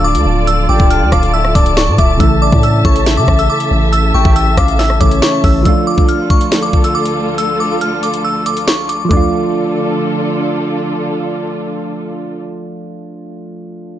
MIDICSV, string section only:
0, 0, Header, 1, 2, 480
1, 0, Start_track
1, 0, Key_signature, -1, "minor"
1, 0, Tempo, 431655
1, 527, Time_signature, 4, 2, 24, 8
1, 15559, End_track
2, 0, Start_track
2, 0, Title_t, "String section"
2, 0, Program_c, 0, 48
2, 0, Note_on_c, 0, 65, 78
2, 0, Note_on_c, 0, 69, 72
2, 0, Note_on_c, 0, 74, 74
2, 0, Note_on_c, 0, 81, 86
2, 2409, Note_off_c, 0, 65, 0
2, 2409, Note_off_c, 0, 74, 0
2, 2447, Note_on_c, 0, 76, 76
2, 2448, Note_on_c, 0, 49, 81
2, 6243, Note_off_c, 0, 69, 0
2, 6243, Note_off_c, 0, 81, 0
2, 6249, Note_off_c, 0, 49, 0
2, 6249, Note_off_c, 0, 76, 0
2, 6288, Note_on_c, 0, 38, 80
2, 6288, Note_on_c, 0, 50, 74
2, 6288, Note_on_c, 0, 65, 73
2, 6288, Note_on_c, 0, 69, 87
2, 10089, Note_off_c, 0, 50, 0
2, 10089, Note_off_c, 0, 69, 0
2, 10090, Note_off_c, 0, 38, 0
2, 10090, Note_off_c, 0, 65, 0
2, 10128, Note_on_c, 0, 50, 76
2, 10128, Note_on_c, 0, 62, 70
2, 10128, Note_on_c, 0, 65, 71
2, 10128, Note_on_c, 0, 69, 85
2, 13753, Note_off_c, 0, 50, 0
2, 13753, Note_off_c, 0, 62, 0
2, 13753, Note_off_c, 0, 65, 0
2, 13753, Note_off_c, 0, 69, 0
2, 15559, End_track
0, 0, End_of_file